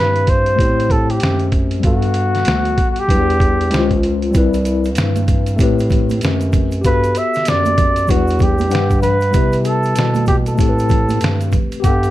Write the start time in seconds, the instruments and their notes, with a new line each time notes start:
Already playing: bass clarinet G2, tine electric piano G3 C4 E4 G4, flugelhorn B4
0.16 closed hi-hat
0.27 flugelhorn C5, kick, closed hi-hat
0.46 closed hi-hat
0.56 bass clarinet A2, tine electric piano A3 B3, kick
0.60 tine electric piano G4 C5, closed hi-hat
0.64 tine electric piano C4
0.80 closed hi-hat
0.90 flugelhorn A4, kick, closed hi-hat
1.10 flugelhorn G4, closed hi-hat
1.20 bass clarinet F#2, snare, closed hi-hat
1.40 closed hi-hat
1.52 kick, closed hi-hat
1.71 closed hi-hat
1.80 bass clarinet G2, tine electric piano G3 B3, kick, closed hi-hat
1.85 tine electric piano F#4 A4, flugelhorn F#4
2.02 closed hi-hat
2.14 closed hi-hat
2.35 snare, closed hi-hat
2.45 bass clarinet D2, snare, closed hi-hat
2.65 closed hi-hat
2.78 kick, closed hi-hat
2.90 flugelhorn F#4
2.96 flugelhorn G4, closed hi-hat
3.08 bass clarinet E2, tine electric piano F#3 D4 E4 B4, kick, closed hi-hat
3.14 tine electric piano G3
3.30 closed hi-hat
3.40 kick, closed hi-hat
3.61 closed hi-hat
3.70 bass clarinet C#2, tine electric piano G#3 C#4 E4 C5, closed hi-hat
3.74 snare
3.79 tine electric piano F4
3.91 kick, closed hi-hat
4.03 closed hi-hat
4.22 closed hi-hat
4.31 bass clarinet C2, tine electric piano G3 C4, kick, closed hi-hat, shaker
4.36 tine electric piano E4 B4
4.54 closed hi-hat, shaker
4.65 closed hi-hat, shaker
4.84 closed hi-hat, shaker
4.95 bass clarinet G2, snare, closed hi-hat, shaker
5.16 closed hi-hat, high conga, shaker
5.28 kick, closed hi-hat, low conga, shaker
5.46 closed hi-hat, shaker
5.56 bass clarinet A2, tine electric piano A3 C4, kick, high conga, shaker
5.60 tine electric piano G4 B4, closed hi-hat
5.79 closed hi-hat, shaker
5.90 kick, closed hi-hat, low conga, shaker
6.09 closed hi-hat, high conga, shaker
6.21 bass clarinet F#2, snare, closed hi-hat, shaker
6.41 closed hi-hat, shaker
6.53 kick, closed hi-hat, low conga, shaker
6.71 closed hi-hat, shaker
6.81 bass clarinet G2, tine electric piano B3 G4, kick, closed hi-hat, shaker
6.86 tine electric piano F#4 A4, flugelhorn B4
7.04 closed hi-hat, shaker
7.15 flugelhorn E5, closed hi-hat, shaker
7.34 snare, closed hi-hat, shaker
7.45 bass clarinet F#2, flugelhorn D5, snare, closed hi-hat, shaker
7.65 closed hi-hat, high conga, shaker
7.77 kick, closed hi-hat, low conga, shaker
7.96 closed hi-hat, shaker
8.07 bass clarinet E2, tine electric piano F#3 D4 E4 B4, flugelhorn F#4, kick, closed hi-hat, high conga, shaker
8.14 tine electric piano G3
8.28 closed hi-hat, shaker
8.39 flugelhorn G4, kick, closed hi-hat, low conga, shaker
8.58 closed hi-hat, high conga, shaker
8.69 bass clarinet G2, tine electric piano G3 D4 B4 F#5, closed hi-hat, shaker
8.75 snare
8.90 kick, closed hi-hat, shaker
9.03 flugelhorn B4, closed hi-hat, low conga, shaker
9.21 closed hi-hat, shaker
9.31 bass clarinet C3, tine electric piano G3 B3, kick, closed hi-hat, shaker
9.35 tine electric piano E4 B4
9.52 closed hi-hat, shaker
9.65 flugelhorn A4, closed hi-hat, shaker
9.83 closed hi-hat, shaker
9.95 bass clarinet B2, snare, closed hi-hat, shaker
10.15 closed hi-hat, high conga, shaker
10.26 flugelhorn G4, kick, closed hi-hat, low conga, shaker
10.46 flugelhorn A4, closed hi-hat, shaker
10.55 bass clarinet A2, tine electric piano A3 C4, kick, high conga, shaker
10.60 tine electric piano G4 A4, closed hi-hat
10.69 tine electric piano B4
10.79 closed hi-hat, shaker
10.89 kick, closed hi-hat, low conga, shaker
11.09 closed hi-hat, high conga, shaker
11.21 bass clarinet G2, snare, closed hi-hat, shaker
11.41 closed hi-hat, shaker
11.52 kick, closed hi-hat, low conga, shaker
11.72 closed hi-hat, shaker
11.80 tine electric piano B3 G4, flugelhorn G4, closed hi-hat, shaker
11.84 bass clarinet G2, tine electric piano A4 F#5, kick
12.03 closed hi-hat, shaker